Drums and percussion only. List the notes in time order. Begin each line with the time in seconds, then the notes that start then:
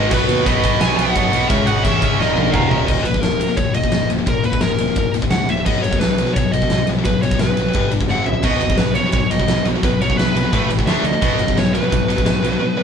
0.11 kick, crash
0.29 ride
0.46 kick, ride
0.64 kick, ride
0.81 snare, ride
0.99 ride
1.16 kick, ride
1.33 ride
1.50 kick, ride
1.67 ride
1.85 kick, ride
2.02 kick, ride
2.21 snare
2.37 high tom
2.54 kick, mid tom
2.71 floor tom
2.88 kick, crash
3.05 ride
3.14 kick
3.23 snare, ride
3.41 ride
3.57 kick, ride
3.74 ride
3.84 kick
3.92 snare, ride
4.10 ride
4.27 kick, ride
4.44 ride
4.53 kick
4.61 snare, ride
4.78 ride
4.96 kick, ride
5.14 ride
5.22 kick
5.31 snare, ride
5.49 ride
5.66 kick, crash
5.84 ride
5.93 kick
6.01 snare, ride
6.18 ride
6.36 kick, ride
6.53 ride
6.62 kick
6.70 snare, ride
6.87 ride
7.05 kick, ride
7.23 ride
7.31 kick
7.39 snare, ride
7.57 ride
7.73 kick, ride
7.91 ride
8.01 kick
8.08 snare
8.26 floor tom
8.43 kick, crash
8.61 ride
8.70 kick
8.78 snare, ride
8.95 ride
9.12 kick, ride
9.31 ride
9.40 kick
9.48 snare, ride
9.65 ride
9.83 kick, ride
10.02 ride
10.10 kick
10.19 snare, ride
10.37 ride
10.53 kick, ride
10.70 ride
10.79 kick
10.87 snare, ride
11.05 ride
11.22 kick, crash
11.39 ride
11.48 kick
11.57 snare, ride
11.75 ride
11.92 kick, ride
12.10 ride
12.18 kick
12.26 snare, ride
12.44 ride